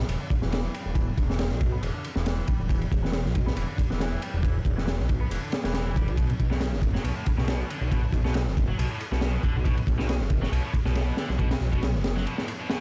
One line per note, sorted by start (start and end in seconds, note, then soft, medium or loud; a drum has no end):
0.08 0.16 E1 medium
0.08 0.17 E3 medium
0.08 ride medium
0.20 0.28 D3 loud
0.30 kick loud
0.30 ride medium
0.42 0.68 E1 medium
0.42 0.49 E3 medium
0.42 snare soft
0.52 0.73 E3 medium
0.52 snare loud
0.52 ride medium
0.74 0.85 G3 medium
0.74 ride medium
0.86 1.12 E1 medium
0.95 1.04 E3 medium
0.95 kick loud
0.95 ride medium
1.18 1.52 E1 loud
1.18 kick medium
1.18 ride medium
1.29 1.36 E3 medium
1.29 snare medium
1.39 snare loud
1.39 ride medium
1.51 1.77 B1 medium
1.51 snare soft
1.61 kick medium
1.61 ride medium
1.72 1.80 B3 loud
1.83 1.90 E1 loud
1.83 1.91 E3 medium
1.83 ride medium
1.94 2.02 D3 loud
2.04 ride medium
2.16 2.42 E1 medium
2.16 2.23 E3 medium
2.16 snare soft
2.26 2.47 E3 medium
2.26 snare loud
2.26 ride medium
2.47 2.59 G3 medium
2.47 kick medium
2.47 ride medium
2.60 2.85 E1 medium
2.69 2.78 E3 medium
2.69 kick loud
2.69 ride medium
2.81 ride soft
2.92 3.27 E1 loud
2.92 kick medium
2.92 ride medium
3.03 3.10 E3 medium
3.03 snare medium
3.13 snare loud
3.13 ride medium
3.25 3.51 B1 medium
3.25 snare soft
3.35 kick loud
3.35 ride medium
3.46 3.54 B3 loud
3.46 snare medium
3.56 3.64 E1 loud
3.56 3.65 E3 medium
3.56 ride medium
3.68 3.75 D3 loud
3.78 kick medium
3.78 ride medium
3.90 4.16 E1 medium
3.90 3.97 E3 medium
3.90 snare soft
4.00 4.21 E3 medium
4.00 snare loud
4.00 ride medium
4.22 4.33 G3 medium
4.22 ride medium
4.34 4.59 E1 medium
4.43 4.52 E3 medium
4.43 kick loud
4.43 ride medium
4.65 5.01 E1 loud
4.65 kick medium
4.65 ride medium
4.77 4.84 E3 medium
4.77 snare medium
4.88 snare loud
4.88 ride medium
4.99 5.25 B1 medium
4.99 snare soft
5.09 kick loud
5.09 ride medium
5.21 5.28 B3 loud
5.31 5.38 E1 loud
5.31 5.39 E3 medium
5.31 ride medium
5.42 5.49 D3 loud
5.52 snare loud
5.52 ride medium
5.64 6.09 E1 medium
5.64 5.71 E3 medium
5.64 snare loud
5.64 ride medium
5.74 5.95 E3 medium
5.74 snare loud
5.74 ride medium
5.96 6.07 G3 medium
5.96 kick medium
5.96 ride medium
6.08 6.33 B1 medium
6.08 ride soft
6.17 6.26 B2 medium
6.17 kick loud
6.17 ride medium
6.30 ride soft
6.40 6.74 B1 loud
6.40 kick loud
6.40 ride medium
6.51 6.58 B2 medium
6.51 snare medium
6.61 snare loud
6.61 ride loud
6.73 6.98 F#1 medium
6.73 snare soft
6.82 kick medium
6.82 ride medium
6.94 7.01 F#3 loud
6.94 snare medium
7.04 7.12 B1 loud
7.04 7.13 B2 medium
7.04 ride medium
7.16 7.23 A2 loud
7.26 kick loud
7.26 ride medium
7.38 7.64 B1 medium
7.38 7.45 B2 medium
7.38 snare soft
7.48 7.69 B2 medium
7.48 snare loud
7.48 ride medium
7.70 7.81 D3 medium
7.70 ride medium
7.81 8.07 B1 medium
7.91 8.00 B2 medium
7.91 kick loud
7.91 ride medium
8.13 8.48 B1 loud
8.13 kick medium
8.13 ride medium
8.25 8.32 B2 medium
8.25 snare medium
8.34 snare loud
8.34 ride medium
8.47 8.72 F#1 medium
8.47 snare soft
8.57 kick loud
8.57 ride medium
8.68 8.75 F#3 loud
8.78 8.86 B1 loud
8.78 8.87 B2 medium
8.78 ride medium
8.90 8.97 A2 loud
9.00 ride medium
9.12 9.38 B1 medium
9.12 9.19 B2 medium
9.12 snare soft
9.21 9.43 B2 medium
9.21 snare loud
9.21 ride medium
9.43 9.55 D3 medium
9.43 kick medium
9.43 ride medium
9.55 9.81 B1 medium
9.65 9.74 B2 medium
9.65 kick loud
9.65 ride medium
9.77 ride soft
9.87 10.22 B1 loud
9.87 kick medium
9.87 ride medium
9.98 10.06 B2 medium
9.98 snare medium
10.09 snare loud
10.09 ride medium
10.20 10.46 F#1 medium
10.20 snare soft
10.30 kick loud
10.30 ride medium
10.42 10.49 F#3 medium
10.42 snare medium
10.52 10.60 B1 loud
10.52 10.61 B2 medium
10.52 ride medium
10.64 10.71 A2 loud
10.74 kick medium
10.74 ride medium
10.85 11.11 B1 medium
10.85 10.93 B2 medium
10.85 snare soft
10.95 11.17 B2 medium
10.95 snare loud
10.95 ride medium
11.17 11.29 D3 medium
11.17 snare loud
11.17 ride medium
11.29 11.55 B1 medium
11.29 snare soft
11.39 11.48 B2 medium
11.39 kick medium
11.39 ride medium
11.51 snare loud
11.51 ride medium
11.60 11.96 B1 loud
11.60 snare soft
11.72 11.80 B2 medium
11.72 kick medium
11.72 ride medium
11.83 snare loud
11.83 ride medium
11.94 12.26 F#1 medium
11.94 snare soft
12.04 snare loud
12.04 ride medium
12.16 12.23 F#3 loud
12.16 snare soft
12.26 12.35 B2 medium
12.26 ride medium
12.38 12.45 A2 loud
12.38 snare medium
12.48 ride medium
12.60 12.67 B2 medium
12.70 12.80 B2 medium
12.70 snare loud
12.70 ride medium